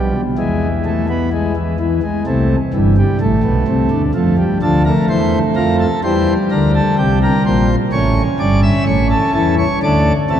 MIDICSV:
0, 0, Header, 1, 2, 480
1, 0, Start_track
1, 0, Key_signature, -1, "minor"
1, 0, Tempo, 943396
1, 198, Time_signature, 4, 2, 24, 8
1, 5291, End_track
2, 0, Start_track
2, 0, Title_t, "Pipe organ"
2, 0, Program_c, 0, 19
2, 0, Note_on_c, 0, 35, 63
2, 0, Note_on_c, 0, 47, 52
2, 0, Note_on_c, 0, 55, 65
2, 62, Note_off_c, 0, 35, 0
2, 62, Note_off_c, 0, 47, 0
2, 107, Note_off_c, 0, 55, 0
2, 194, Note_on_c, 0, 52, 64
2, 194, Note_on_c, 0, 56, 74
2, 195, Note_on_c, 0, 40, 68
2, 343, Note_off_c, 0, 56, 0
2, 433, Note_on_c, 0, 57, 69
2, 537, Note_off_c, 0, 57, 0
2, 554, Note_on_c, 0, 59, 70
2, 658, Note_off_c, 0, 59, 0
2, 675, Note_on_c, 0, 56, 66
2, 778, Note_off_c, 0, 56, 0
2, 786, Note_off_c, 0, 52, 0
2, 796, Note_on_c, 0, 52, 63
2, 898, Note_off_c, 0, 52, 0
2, 915, Note_on_c, 0, 52, 64
2, 1017, Note_off_c, 0, 52, 0
2, 1018, Note_off_c, 0, 40, 0
2, 1031, Note_on_c, 0, 56, 72
2, 1135, Note_off_c, 0, 56, 0
2, 1152, Note_on_c, 0, 57, 79
2, 1153, Note_on_c, 0, 36, 61
2, 1153, Note_on_c, 0, 48, 65
2, 1301, Note_off_c, 0, 36, 0
2, 1301, Note_off_c, 0, 48, 0
2, 1301, Note_off_c, 0, 57, 0
2, 1392, Note_on_c, 0, 31, 53
2, 1392, Note_on_c, 0, 43, 58
2, 1393, Note_on_c, 0, 52, 69
2, 1496, Note_off_c, 0, 52, 0
2, 1512, Note_on_c, 0, 55, 77
2, 1540, Note_off_c, 0, 31, 0
2, 1540, Note_off_c, 0, 43, 0
2, 1615, Note_off_c, 0, 55, 0
2, 1630, Note_on_c, 0, 33, 58
2, 1631, Note_on_c, 0, 45, 59
2, 1633, Note_on_c, 0, 57, 81
2, 1733, Note_off_c, 0, 33, 0
2, 1734, Note_off_c, 0, 45, 0
2, 1746, Note_on_c, 0, 35, 61
2, 1748, Note_on_c, 0, 47, 64
2, 1851, Note_off_c, 0, 35, 0
2, 1852, Note_off_c, 0, 47, 0
2, 1869, Note_on_c, 0, 36, 53
2, 1871, Note_on_c, 0, 48, 62
2, 1972, Note_off_c, 0, 36, 0
2, 1974, Note_off_c, 0, 48, 0
2, 1989, Note_on_c, 0, 50, 60
2, 1991, Note_on_c, 0, 38, 64
2, 2043, Note_off_c, 0, 57, 0
2, 2092, Note_off_c, 0, 50, 0
2, 2093, Note_off_c, 0, 38, 0
2, 2108, Note_on_c, 0, 41, 71
2, 2108, Note_on_c, 0, 53, 72
2, 2110, Note_on_c, 0, 57, 65
2, 2213, Note_off_c, 0, 57, 0
2, 2227, Note_on_c, 0, 55, 52
2, 2257, Note_off_c, 0, 41, 0
2, 2257, Note_off_c, 0, 53, 0
2, 2331, Note_off_c, 0, 55, 0
2, 2352, Note_on_c, 0, 38, 57
2, 2352, Note_on_c, 0, 50, 64
2, 2352, Note_on_c, 0, 53, 64
2, 2354, Note_on_c, 0, 69, 76
2, 2454, Note_off_c, 0, 53, 0
2, 2455, Note_off_c, 0, 69, 0
2, 2470, Note_on_c, 0, 70, 81
2, 2472, Note_on_c, 0, 57, 60
2, 2500, Note_off_c, 0, 38, 0
2, 2500, Note_off_c, 0, 50, 0
2, 2573, Note_off_c, 0, 70, 0
2, 2592, Note_on_c, 0, 72, 77
2, 2593, Note_on_c, 0, 40, 63
2, 2593, Note_on_c, 0, 52, 61
2, 2740, Note_off_c, 0, 40, 0
2, 2740, Note_off_c, 0, 52, 0
2, 2740, Note_off_c, 0, 72, 0
2, 2829, Note_on_c, 0, 41, 62
2, 2830, Note_on_c, 0, 70, 79
2, 2831, Note_on_c, 0, 53, 63
2, 2933, Note_off_c, 0, 70, 0
2, 2951, Note_on_c, 0, 69, 80
2, 2978, Note_off_c, 0, 41, 0
2, 2979, Note_off_c, 0, 53, 0
2, 2987, Note_off_c, 0, 57, 0
2, 3054, Note_off_c, 0, 69, 0
2, 3073, Note_on_c, 0, 55, 59
2, 3073, Note_on_c, 0, 72, 86
2, 3074, Note_on_c, 0, 40, 69
2, 3075, Note_on_c, 0, 52, 72
2, 3222, Note_off_c, 0, 40, 0
2, 3222, Note_off_c, 0, 72, 0
2, 3223, Note_off_c, 0, 52, 0
2, 3314, Note_on_c, 0, 70, 69
2, 3315, Note_on_c, 0, 38, 59
2, 3316, Note_on_c, 0, 50, 61
2, 3417, Note_off_c, 0, 70, 0
2, 3435, Note_on_c, 0, 69, 72
2, 3464, Note_off_c, 0, 38, 0
2, 3464, Note_off_c, 0, 50, 0
2, 3538, Note_off_c, 0, 69, 0
2, 3553, Note_on_c, 0, 36, 74
2, 3553, Note_on_c, 0, 48, 71
2, 3553, Note_on_c, 0, 67, 84
2, 3657, Note_off_c, 0, 67, 0
2, 3679, Note_on_c, 0, 70, 79
2, 3703, Note_off_c, 0, 36, 0
2, 3703, Note_off_c, 0, 48, 0
2, 3780, Note_off_c, 0, 70, 0
2, 3795, Note_on_c, 0, 46, 60
2, 3795, Note_on_c, 0, 72, 76
2, 3796, Note_on_c, 0, 34, 61
2, 3903, Note_off_c, 0, 55, 0
2, 3945, Note_off_c, 0, 34, 0
2, 3945, Note_off_c, 0, 46, 0
2, 3945, Note_off_c, 0, 72, 0
2, 4032, Note_on_c, 0, 33, 70
2, 4032, Note_on_c, 0, 61, 73
2, 4032, Note_on_c, 0, 73, 89
2, 4033, Note_on_c, 0, 45, 69
2, 4183, Note_off_c, 0, 33, 0
2, 4183, Note_off_c, 0, 45, 0
2, 4183, Note_off_c, 0, 73, 0
2, 4272, Note_on_c, 0, 43, 64
2, 4272, Note_on_c, 0, 74, 75
2, 4273, Note_on_c, 0, 31, 64
2, 4377, Note_off_c, 0, 74, 0
2, 4389, Note_on_c, 0, 76, 81
2, 4422, Note_off_c, 0, 43, 0
2, 4423, Note_off_c, 0, 31, 0
2, 4495, Note_off_c, 0, 76, 0
2, 4510, Note_on_c, 0, 33, 65
2, 4511, Note_on_c, 0, 45, 62
2, 4512, Note_on_c, 0, 73, 77
2, 4617, Note_off_c, 0, 73, 0
2, 4633, Note_on_c, 0, 69, 77
2, 4661, Note_off_c, 0, 33, 0
2, 4662, Note_off_c, 0, 45, 0
2, 4738, Note_off_c, 0, 69, 0
2, 4753, Note_on_c, 0, 69, 81
2, 4754, Note_on_c, 0, 40, 63
2, 4754, Note_on_c, 0, 52, 63
2, 4858, Note_off_c, 0, 69, 0
2, 4861, Note_off_c, 0, 61, 0
2, 4876, Note_on_c, 0, 73, 89
2, 4904, Note_off_c, 0, 40, 0
2, 4904, Note_off_c, 0, 52, 0
2, 4980, Note_off_c, 0, 73, 0
2, 4999, Note_on_c, 0, 38, 65
2, 5000, Note_on_c, 0, 50, 67
2, 5001, Note_on_c, 0, 57, 65
2, 5002, Note_on_c, 0, 74, 83
2, 5149, Note_off_c, 0, 38, 0
2, 5150, Note_off_c, 0, 50, 0
2, 5150, Note_off_c, 0, 57, 0
2, 5151, Note_off_c, 0, 74, 0
2, 5241, Note_on_c, 0, 36, 60
2, 5241, Note_on_c, 0, 48, 56
2, 5241, Note_on_c, 0, 52, 58
2, 5241, Note_on_c, 0, 69, 75
2, 5291, Note_off_c, 0, 36, 0
2, 5291, Note_off_c, 0, 48, 0
2, 5291, Note_off_c, 0, 52, 0
2, 5291, Note_off_c, 0, 69, 0
2, 5291, End_track
0, 0, End_of_file